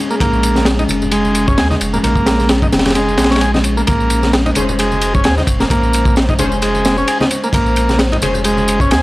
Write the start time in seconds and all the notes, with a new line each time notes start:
Already playing: G#3 C#4 G#4
0.10 A#3, tambourine
0.20 A#1 A#3, kick, ride, tambourine, high conga
0.33 tambourine
0.43 ride, tambourine
0.56 snare, tambourine, high conga
0.65 snare, ride, tambourine
0.79 D#4, ride, tambourine, low conga
0.88 F1, ride, tambourine, high conga
1.02 tambourine, low conga
1.12 G#3, ride, tambourine
1.25 tambourine, high conga
1.35 ride, tambourine
1.48 C#4, kick, tambourine
1.58 D#2 G#4, snare, ride, tambourine
1.71 D#4, snare, tambourine, high conga
1.81 F1, ride, tambourine
1.93 A#3, tambourine, low conga
2.03 A#1 A#3, ride, tambourine, high conga
2.15 kick, tambourine
2.26 snare, ride, tambourine
2.39 snare, tambourine, high conga
2.49 snare, ride, tambourine
2.62 D#4, kick, tambourine, low conga
2.72 F1, snare, ride, tambourine, high conga
2.79 snare, ride
2.85 snare, ride, tambourine, low conga
2.90 snare, ride
2.95 G#3, ride, tambourine
3.08 tambourine, high conga
3.18 A#1, snare, ride, tambourine
3.24 snare, ride
3.31 C#4, snare, ride, tambourine
3.36 snare, ride
3.41 G#4, ride, tambourine
3.54 D#4, snare, tambourine, high conga
3.64 ride, tambourine
3.77 A#3, tambourine
3.87 A#1 A#3 C5, kick, ride, tambourine, high conga
4.00 tambourine
4.10 ride, tambourine
4.23 snare, tambourine, high conga
4.33 snare, ride, tambourine
4.46 D#4, ride, tambourine, low conga
4.55 F1 C#4 G#4 C5, ride, tambourine, high conga
4.69 tambourine, low conga
4.79 G#3, ride, tambourine
4.92 tambourine, high conga
5.02 ride, tambourine
5.15 C#4, kick, tambourine
5.24 D#2 G#4, snare, ride, tambourine
5.37 D#4, snare, tambourine, high conga
5.47 F1, kick, ride, tambourine
5.60 A#3, snare, tambourine, low conga
5.70 A#1 A#3, kick, ride, tambourine, high conga
5.83 tambourine
5.93 ride, tambourine
6.05 kick, tambourine, high conga
6.16 snare, ride, tambourine
6.29 D#4, kick, tambourine, low conga
6.39 F1 C#4 G#4 C5, ride, tambourine, high conga
6.52 tambourine, low conga
6.62 G#3, ride, tambourine
6.75 tambourine, high conga
6.85 snare, ride, tambourine
6.98 C#4, tambourine
7.08 G#4, ride, tambourine
7.20 D#4, snare, tambourine, high conga
7.31 ride, tambourine
7.44 A#3, tambourine
7.53 A#1 A#3, kick, ride, tambourine, high conga
7.66 tambourine
7.76 ride, tambourine
7.89 snare, tambourine, high conga
7.99 snare, ride, tambourine
8.12 D#4, ride, tambourine, low conga
8.22 F1 C#4 G#4 C5, ride, tambourine, high conga
8.34 tambourine, low conga
8.44 G#3, ride, tambourine
8.57 tambourine, high conga
8.68 ride, tambourine
8.80 C#4, kick, tambourine
8.91 D#2 G#4, snare, ride, tambourine